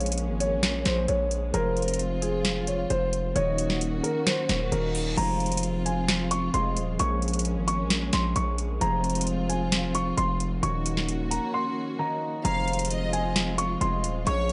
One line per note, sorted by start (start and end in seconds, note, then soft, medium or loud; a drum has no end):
0.00 0.30 A#1 loud
0.00 1.51 F3 medium
0.00 3.32 G#3 medium
0.00 1.52 A#3 medium
0.00 2.93 A#3 medium
0.00 1.52 C#4 medium
0.00 1.60 C#4 medium
0.00 1.54 G#4 medium
0.00 0.15 C#5 medium
0.00 1.60 C#5 medium
0.00 closed hi-hat medium
0.06 closed hi-hat medium
0.12 closed hi-hat medium
0.18 closed hi-hat medium
0.29 0.59 G#1 loud
0.40 0.83 C#5 medium
0.40 closed hi-hat medium
0.57 0.84 A#1 loud
0.63 snare loud
0.63 closed hi-hat medium
0.85 1.07 A#1 loud
0.85 1.04 C5 medium
0.85 snare loud
0.85 closed hi-hat medium
1.08 1.52 A#1 loud
1.08 1.51 C#5 medium
1.08 closed hi-hat medium
1.31 closed hi-hat medium
1.53 2.86 F1 loud
1.53 3.41 F3 medium
1.53 3.41 G#3 medium
1.53 3.34 C4 medium
1.53 3.42 C4 medium
1.53 3.34 F4 medium
1.53 3.82 G#4 medium
1.53 1.97 A#4 loud
1.53 3.42 C5 medium
1.53 closed hi-hat medium
1.77 closed hi-hat medium
1.82 closed hi-hat medium
1.88 closed hi-hat medium
1.94 closed hi-hat medium
1.99 closed hi-hat medium
2.22 2.65 G#4 medium
2.22 closed hi-hat medium
2.45 snare loud
2.45 closed hi-hat medium
2.67 2.86 C#5 medium
2.67 closed hi-hat medium
2.90 3.34 F1 loud
2.90 3.33 C5 medium
2.90 closed hi-hat medium
3.13 closed hi-hat medium
3.35 4.01 D#1 loud
3.35 4.70 D#3 medium
3.35 5.16 D#3 medium
3.35 4.72 A#3 medium
3.35 5.16 A#3 medium
3.35 5.16 C#4 medium
3.35 4.71 C#4 medium
3.35 5.16 F#4 medium
3.35 4.72 F#4 medium
3.35 3.78 C#5 loud
3.35 4.72 D#5 medium
3.35 closed hi-hat medium
3.58 closed hi-hat medium
3.70 snare medium
3.81 closed hi-hat medium
4.03 4.22 A#4 medium
4.03 closed hi-hat medium
4.27 4.69 C5 medium
4.27 snare loud
4.27 closed hi-hat medium
4.27 reverse cymbal medium
4.49 4.71 D#1 loud
4.49 snare loud
4.49 closed hi-hat medium
4.71 5.16 D#1 loud
4.71 5.23 D#3 medium
4.71 5.17 A#3 medium
4.71 5.17 C#4 soft
4.71 5.18 F#4 soft
4.71 5.15 A#4 medium
4.71 5.18 D#5 medium
4.71 closed hi-hat medium
4.95 open hi-hat medium
5.16 6.50 F1 loud
5.16 6.52 F3 medium
5.16 6.53 G#3 medium
5.16 10.59 G#3 medium
5.16 6.54 C4 medium
5.16 6.98 C4 medium
5.16 6.98 F4 medium
5.16 6.54 G#4 medium
5.16 7.05 C5 medium
5.16 5.60 A#5 loud
5.16 closed hi-hat medium
5.16 crash loud
5.40 closed hi-hat medium
5.46 closed hi-hat medium
5.52 closed hi-hat medium
5.57 closed hi-hat medium
5.63 closed hi-hat medium
5.86 6.28 G#5 medium
5.86 closed hi-hat medium
6.08 snare loud
6.08 closed hi-hat medium
6.31 6.50 C#6 medium
6.31 closed hi-hat medium
6.53 6.78 F1 loud
6.53 6.97 F3 medium
6.53 7.04 G#3 soft
6.53 7.00 C4 soft
6.53 6.99 G#4 soft
6.53 7.00 D#5 medium
6.53 6.97 C6 medium
6.53 closed hi-hat medium
6.77 6.98 D#1 loud
6.77 closed hi-hat medium
6.98 7.58 A#1 loud
6.98 8.79 F3 medium
6.98 10.20 A#3 medium
6.98 8.79 A#3 medium
6.98 8.87 C#4 medium
6.98 8.79 C#4 medium
6.98 8.81 G#4 medium
6.98 8.87 C#5 medium
6.98 7.42 C#6 medium
6.98 closed hi-hat medium
7.22 closed hi-hat medium
7.28 closed hi-hat medium
7.33 closed hi-hat medium
7.39 closed hi-hat medium
7.45 closed hi-hat medium
7.56 7.86 G#1 loud
7.68 8.10 C#6 medium
7.68 closed hi-hat medium
7.85 8.12 A#1 loud
7.90 snare loud
7.90 closed hi-hat medium
8.13 8.35 A#1 loud
8.13 8.32 C6 medium
8.13 snare loud
8.13 closed hi-hat medium
8.36 8.79 A#1 loud
8.36 8.79 C#6 medium
8.36 closed hi-hat medium
8.58 closed hi-hat medium
8.80 10.14 F1 loud
8.80 10.68 F3 medium
8.80 10.68 G#3 medium
8.80 10.61 C4 medium
8.80 10.69 C4 medium
8.80 10.61 F4 medium
8.80 11.09 G#4 medium
8.80 10.69 C5 medium
8.80 9.24 A#5 loud
8.80 closed hi-hat medium
9.04 closed hi-hat medium
9.10 closed hi-hat medium
9.15 closed hi-hat medium
9.21 closed hi-hat medium
9.27 closed hi-hat medium
9.49 9.92 G#5 medium
9.49 closed hi-hat medium
9.72 snare loud
9.72 closed hi-hat medium
9.95 10.13 C#6 medium
9.95 closed hi-hat medium
10.17 10.61 F1 loud
10.17 10.60 C6 loud
10.17 closed hi-hat medium
10.40 closed hi-hat medium
10.62 11.39 D#1 loud
10.62 11.97 D#3 medium
10.62 12.43 D#3 medium
10.62 11.99 A#3 medium
10.62 12.43 A#3 medium
10.62 12.43 C#4 medium
10.62 11.99 C#4 medium
10.62 12.43 F#4 medium
10.62 11.99 F#4 medium
10.62 12.51 C#5 medium
10.62 11.06 C#6 loud
10.62 closed hi-hat medium
10.86 closed hi-hat medium
10.97 snare medium
11.09 closed hi-hat medium
11.31 11.49 A#5 medium
11.31 closed hi-hat medium
11.54 11.97 C6 medium
11.98 12.50 D#3 medium
11.98 12.45 A#3 medium
11.98 12.45 C#4 soft
11.98 12.45 F#4 soft
11.98 12.45 D#5 medium
11.98 12.42 A#5 medium
12.44 13.77 F1 loud
12.44 13.80 F3 medium
12.44 13.80 G#3 medium
12.44 14.53 G#3 medium
12.44 14.25 C4 medium
12.44 13.81 C4 medium
12.44 14.25 F4 medium
12.44 13.82 G#4 medium
12.44 14.33 C5 medium
12.44 12.88 F5 loud
12.44 12.87 A#5 loud
12.44 closed hi-hat medium
12.68 closed hi-hat medium
12.73 closed hi-hat medium
12.79 closed hi-hat medium
12.85 closed hi-hat medium
12.90 13.33 D#5 medium
12.90 closed hi-hat medium
13.13 13.56 G#5 medium
13.13 closed hi-hat medium
13.36 snare loud
13.36 closed hi-hat medium
13.58 13.77 C#6 medium
13.58 closed hi-hat medium
13.81 14.05 F1 loud
13.81 14.24 F3 soft
13.81 14.32 G#3 soft
13.81 14.27 C4 soft
13.81 14.26 G#4 soft
13.81 14.27 D#5 medium
13.81 14.24 C6 medium
13.81 closed hi-hat medium
14.04 14.25 D#1 loud
14.04 closed hi-hat medium
14.25 14.53 A#1 loud
14.25 14.53 F3 medium
14.25 14.53 A#3 medium
14.25 14.53 C#4 medium
14.25 14.53 G#4 medium
14.25 14.53 C#5 loud
14.25 14.53 C#5 medium
14.25 14.53 C#6 medium
14.25 closed hi-hat medium
14.49 closed hi-hat medium